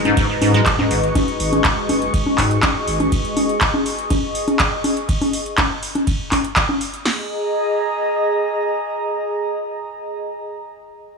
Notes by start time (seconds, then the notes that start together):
Already playing: F#1 G#3 D#4 F#4 G#4 B4 D#5 A#5
0.05 G#2, closed hi-hat, high conga
0.17 G#2, kick, closed hi-hat, ride
0.30 G#2
0.42 G#2, open hi-hat, high conga
0.54 G#3, closed hi-hat
0.66 A#2 C#6, kick, clap, closed hi-hat, ride
0.79 G#2, high conga
0.91 G#1 G#2, open hi-hat
1.03 closed hi-hat
1.15 kick, closed hi-hat, ride, high conga
1.28 closed hi-hat
1.40 G#1, open hi-hat
1.53 closed hi-hat, high conga
1.64 kick, clap, ride
1.89 F#1, open hi-hat, high conga
2.02 closed hi-hat
2.14 kick, closed hi-hat, ride
2.26 high conga
2.38 G#2, kick, clap, open hi-hat
2.51 closed hi-hat
2.63 kick, clap, closed hi-hat, ride, high conga
2.87 G#1, open hi-hat
3.00 closed hi-hat, high conga
3.12 kick, closed hi-hat, ride
3.25 closed hi-hat
3.37 open hi-hat, high conga
3.49 closed hi-hat
3.61 kick, clap, ride
3.74 high conga
3.86 open hi-hat
3.99 closed hi-hat
4.10 kick, closed hi-hat, ride, high conga
4.35 open hi-hat
4.48 closed hi-hat, high conga
4.59 kick, clap, closed hi-hat, ride
4.84 open hi-hat, high conga
4.97 closed hi-hat
5.09 kick, closed hi-hat, ride
5.21 open hi-hat, high conga
5.33 open hi-hat
5.46 closed hi-hat
5.58 kick, clap, ride, high conga
5.83 open hi-hat
5.95 closed hi-hat, high conga
6.07 kick, closed hi-hat, ride
6.32 kick, clap, open hi-hat, high conga
6.44 closed hi-hat
6.56 kick, clap, closed hi-hat, ride
6.69 high conga
6.81 open hi-hat
6.94 closed hi-hat
7.05 G#4, snare, crash
7.13 D#5
7.21 A#5